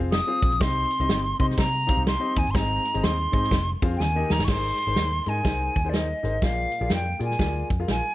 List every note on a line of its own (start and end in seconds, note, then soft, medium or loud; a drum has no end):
0.00 0.19 F1 loud
0.00 0.10 G#4 medium
0.00 0.10 C5 medium
0.00 0.10 F5 medium
0.12 0.63 D#6 loud
0.12 snare loud
0.12 closed hi-hat medium
0.27 0.49 C4 medium
0.27 0.49 F4 medium
0.27 0.50 G#4 medium
0.27 0.50 C5 medium
0.27 0.50 F5 medium
0.42 0.49 A#1 loud
0.42 kick loud
0.42 closed hi-hat medium
0.52 0.59 A#1 medium
0.52 closed hi-hat medium
0.60 0.84 C2 loud
0.60 1.36 C3 medium
0.60 0.87 C4 medium
0.60 0.87 D#4 medium
0.60 0.87 G4 medium
0.60 0.87 C5 medium
0.60 0.87 D#5 medium
0.60 1.40 C6 loud
0.60 kick loud
0.60 snare loud
0.60 closed hi-hat loud
0.91 closed hi-hat medium
0.99 1.07 C2 loud
0.99 1.20 C4 medium
0.99 1.20 D#4 medium
0.99 1.21 G4 medium
0.99 1.21 C5 medium
0.99 1.21 D#5 medium
0.99 closed hi-hat medium
1.09 1.32 G1 medium
1.09 snare loud
1.09 closed hi-hat medium
1.39 1.53 C3 medium
1.39 1.62 C4 medium
1.39 1.63 D#4 medium
1.39 1.63 G4 medium
1.39 1.63 C5 medium
1.39 1.63 D#5 medium
1.39 1.46 C6 loud
1.39 kick medium
1.39 closed hi-hat medium
1.50 snare soft
1.58 1.87 C3 medium
1.58 2.03 A#5 loud
1.58 kick medium
1.58 snare loud
1.58 closed hi-hat medium
1.87 2.03 C4 medium
1.87 2.03 D#4 medium
1.87 2.03 G4 medium
1.87 2.04 C5 medium
1.87 2.04 F5 medium
1.87 kick loud
1.87 closed hi-hat medium
1.97 2.15 C2 medium
2.07 2.40 C6 medium
2.07 snare loud
2.07 closed hi-hat medium
2.19 2.42 C4 medium
2.19 2.42 D#4 medium
2.19 2.42 G4 medium
2.19 2.43 C5 medium
2.19 2.43 D#5 medium
2.36 2.43 D#2 loud
2.36 2.52 G#5 medium
2.36 kick loud
2.36 closed hi-hat medium
2.47 2.53 G1 medium
2.47 closed hi-hat medium
2.51 3.29 G#2 medium
2.51 2.81 C4 medium
2.51 2.81 D#4 medium
2.51 2.81 G#4 medium
2.51 2.57 C6 medium
2.51 closed hi-hat medium
2.55 2.77 G#1 loud
2.55 2.81 C5 medium
2.55 2.81 D#5 medium
2.55 3.05 A#5 loud
2.55 kick loud
2.55 snare loud
2.85 closed hi-hat medium
2.94 3.02 G#1 medium
2.94 3.14 C4 medium
2.94 3.14 D#4 medium
2.94 3.14 G#4 medium
2.94 3.15 C5 medium
2.94 3.15 D#5 medium
2.94 closed hi-hat medium
3.04 3.26 D#2 medium
3.04 3.70 C6 loud
3.04 snare loud
3.04 closed hi-hat medium
3.32 3.47 G#2 medium
3.32 3.51 C4 medium
3.32 3.51 D#4 medium
3.32 3.51 G#4 medium
3.32 3.51 C5 medium
3.32 3.52 D#5 medium
3.32 kick medium
3.32 closed hi-hat medium
3.44 snare soft
3.51 3.74 F1 loud
3.51 kick loud
3.51 snare loud
3.51 closed hi-hat medium
3.82 3.96 F2 medium
3.82 3.98 C4 medium
3.82 3.98 F4 medium
3.82 3.98 G#4 medium
3.82 3.99 C5 medium
3.82 3.99 F5 loud
3.82 kick loud
3.82 closed hi-hat medium
3.97 4.22 D#2 loud
3.97 4.02 G5 medium
3.97 4.33 G#5 loud
3.97 snare medium
4.02 4.46 D#3 medium
4.15 4.37 A#3 medium
4.15 4.37 D#4 medium
4.15 4.37 G4 medium
4.15 4.38 A#4 medium
4.15 4.38 D#5 medium
4.30 4.37 D#2 medium
4.30 4.46 A#5 loud
4.30 snare medium
4.39 4.46 G1 medium
4.39 snare medium
4.45 4.71 G#1 medium
4.45 4.75 D#4 medium
4.45 4.51 C#6 medium
4.45 kick loud
4.45 snare loud
4.45 crash medium
4.49 5.23 G#2 medium
4.49 4.75 G#4 medium
4.49 4.75 A#4 medium
4.49 4.76 C5 medium
4.49 5.31 C6 loud
4.77 closed hi-hat medium
4.87 4.94 G#1 medium
4.87 5.08 D#4 medium
4.87 5.08 G#4 medium
4.87 5.08 A#4 medium
4.87 5.08 C5 medium
4.96 5.19 D#2 medium
4.96 snare loud
4.96 closed hi-hat medium
5.26 5.40 G#2 medium
5.26 5.38 D#4 medium
5.26 5.37 G#4 medium
5.26 5.38 A#4 medium
5.26 5.38 D#5 medium
5.26 5.91 G#5 loud
5.26 closed hi-hat medium
5.43 5.68 C2 medium
5.43 5.71 D#4 medium
5.43 5.71 G#4 medium
5.43 5.71 A#4 medium
5.43 5.71 C5 medium
5.43 kick medium
5.43 snare loud
5.43 closed hi-hat medium
5.76 6.12 D#2 medium
5.76 kick medium
5.76 closed hi-hat medium
5.84 6.05 D#4 medium
5.84 6.05 G#4 medium
5.84 6.05 A#4 medium
5.84 6.06 C5 medium
5.89 5.96 D5 medium
5.93 6.45 D#5 medium
5.93 snare loud
5.93 closed hi-hat medium
6.23 6.37 G#1 medium
6.23 6.34 D#4 medium
6.23 6.35 G#4 medium
6.23 6.35 A#4 medium
6.23 6.35 C5 medium
6.23 closed hi-hat medium
6.42 6.65 A#1 loud
6.42 7.18 A#2 medium
6.42 6.69 F4 medium
6.42 6.69 G#4 medium
6.42 6.69 A#4 medium
6.42 6.69 D5 medium
6.42 6.92 F5 loud
6.42 kick loud
6.42 snare medium
6.42 closed hi-hat medium
6.72 closed hi-hat medium
6.80 6.88 A#1 medium
6.80 7.02 F4 medium
6.80 7.02 G#4 medium
6.80 7.02 A#4 medium
6.80 7.02 D5 medium
6.90 7.13 F2 medium
6.90 snare loud
6.90 closed hi-hat medium
6.94 7.21 G5 medium
7.19 7.34 A#2 medium
7.19 7.31 F4 medium
7.19 7.31 G#4 medium
7.19 7.31 A#4 medium
7.19 7.31 D5 medium
7.19 closed hi-hat medium
7.24 7.68 G#5 medium
7.31 snare soft
7.39 7.62 D2 medium
7.39 7.66 F4 medium
7.39 7.66 G#4 medium
7.39 7.66 A#4 medium
7.39 7.67 D5 medium
7.39 kick medium
7.39 snare loud
7.39 closed hi-hat medium
7.70 7.84 F2 medium
7.70 kick medium
7.70 closed hi-hat medium
7.80 8.00 F4 medium
7.80 8.00 G#4 medium
7.80 8.00 A#4 medium
7.80 8.00 F5 medium
7.88 8.00 A#1 medium
7.88 8.15 G#5 medium
7.88 snare medium
7.88 closed hi-hat medium